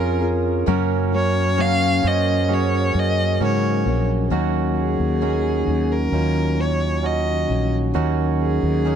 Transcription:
Already playing: F2 F3 C#4 F4 G#4 A#4
0.20 C#4 F4 G#4
0.66 F#2 C#3 F#3 A#3 C#4 F#4 A#4
1.12 F#3 A#3 C#4 F#4 C#5
1.57 F#2 C#3 F#3 A#3 C#4 F#4 C#5 F5
2.03 F#2 F#3 A#3 C#4 F#4 C5
2.07 D#5
2.48 F#3 A#3 C#4 F#4 G#4
2.54 C#5
2.95 F#2
2.99 D#5
3.40 F#2 G#2 C#3 F#3 A#3 C#4 F#4 A#4
3.45 C#5
3.86 A#1 F#3 A#3 C#4 F#4
4.30 D#2 D#3 F#3 A#3 C#4 D#4 F#4
4.79 G#4
5.00 D#2
5.21 D#3 F#3 A#3 C#4 D#4 F#4
5.66 D#2 A#3 C#4 F#4
5.93 A#4
6.12 D#2 F#3 A#3 C#4 D#4 F4 F#4
6.58 A#3 C#4 F#4 C#5
7.03 C#4 D#4 F#4 D#5
7.48 A#1 A#3 C#4 F#4
7.94 D#2 D#3 F#3 A#3 C#4 D#4 F#4
8.42 G#4
8.63 D#2
8.85 D#3 F#3 A#3 C#4 D#4 F#4 G#4

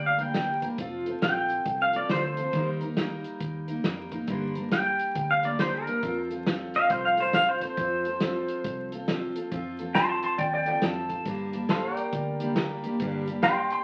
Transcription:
Already playing: D2 G3 A#3 D4 A#4
0.06 F5
0.18 G3 A#3 D4 A#4, closed hi-hat
0.34 G3 A#3 D4 A#4, snare, closed hi-hat
0.62 G3 A#3 D4 A#4, kick, closed hi-hat
0.78 F1 F3 C4 F4 A4, kick, closed hi-hat
1.06 C4 F4 A4, closed hi-hat
1.22 A#1 F3 C4 F4 A4 G5, snare, closed hi-hat
1.50 closed hi-hat
1.66 C2, kick, closed hi-hat
1.82 F5
1.93 C4 F4 A4 D5, closed hi-hat
2.09 D2 F3 C4 F4 A4 C5, snare, closed hi-hat
2.25 C5
2.37 C4 F4 A4, closed hi-hat
2.53 D#2 D#3 G3 A#3 D#4 A#4, kick, closed hi-hat
2.81 A#3 D#4 A#4, closed hi-hat
2.96 G3 A#3 D#4 A#4, snare, closed hi-hat
3.24 closed hi-hat
3.40 D#2, kick, closed hi-hat
3.67 A#3 D#4 A#4, closed hi-hat
3.84 F2 G3 A#3 D#4 A#4, snare, closed hi-hat
4.11 A#3 D#4 A#4, kick, closed hi-hat
4.28 G2 D3 G3 A#3 D4 A#4, kick, closed hi-hat
4.55 G3 A#3 D4 A#4, closed hi-hat
4.71 G3 A#3 D4 A#4 G5, snare, closed hi-hat
4.99 closed hi-hat
5.15 D2, kick, closed hi-hat
5.31 F5
5.42 G3 A#3 D4 A#4 D5, closed hi-hat
5.58 G3 A#3 D4 A#4 C5, snare, closed hi-hat
5.74 A#4
5.86 G3 A#3 D4 A#4, closed hi-hat
6.02 F2 F3 C4 F4 A4, kick, closed hi-hat
6.30 C4 F4 A4, closed hi-hat
6.46 F3 C4 F4 A4, snare, closed hi-hat
6.74 F5, closed hi-hat
6.90 C2 C5, kick, closed hi-hat
7.05 F5
7.17 C4 F4 A4 C5, closed hi-hat
7.33 F3 C4 F4 A4 F5, snare, closed hi-hat
7.49 C5
7.61 C4 F4 A4 C5, kick, closed hi-hat
7.77 F2 F3 C4 F4 A4, kick, closed hi-hat
8.05 C4 F4 A4, closed hi-hat
8.20 F3 C4 F4, snare, closed hi-hat
8.25 A4
8.48 closed hi-hat
8.64 C2, kick, closed hi-hat
8.92 C4 F4 A4, closed hi-hat
9.08 F3 C4 F4 A4, snare, closed hi-hat
9.36 C4 F4 A4, closed hi-hat
9.51 F2 F3 C4 F4 A4, kick, closed hi-hat
9.79 F4 A4, closed hi-hat
9.83 C4
9.95 F3 C4 F4 A4 A5 C6, snare, closed hi-hat
10.09 A5 C6
10.23 A5 C6, closed hi-hat
10.38 D#2 D5 G5, kick, closed hi-hat
10.54 D5 G5
10.66 C4 F4 A4 D5 G5, closed hi-hat
10.81 F2 F3 C4 F4 A4 A5, snare, closed hi-hat
11.09 C4 F4 A4, kick, closed hi-hat
11.25 G2 D3 G3 A#3 D4 G4, kick, closed hi-hat
11.53 G3 A#3 D4 G4, closed hi-hat
11.68 G3 A#3 D4 G4 A4 C5 F5, snare, closed hi-hat
11.90 A#4
11.96 D5 G5, closed hi-hat
12.13 D2, kick, closed hi-hat
12.40 G3 A#3 D4 G4, closed hi-hat
12.56 A#3 D4 G4, snare, closed hi-hat
12.83 G3 A#3 D4 G4, closed hi-hat
13.00 G2 D3 G3 A#3 D4 G4, kick, closed hi-hat
13.26 G3 A#3 D4 G4, closed hi-hat
13.43 G3 D4 G4 G5 C6, snare, closed hi-hat
13.57 G5 C6
13.70 G5 C6, closed hi-hat

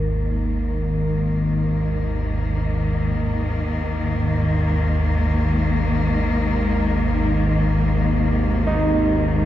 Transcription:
Already playing: G#1 D#2 G#2 D#3 A#3 A#4
8.67 D#4

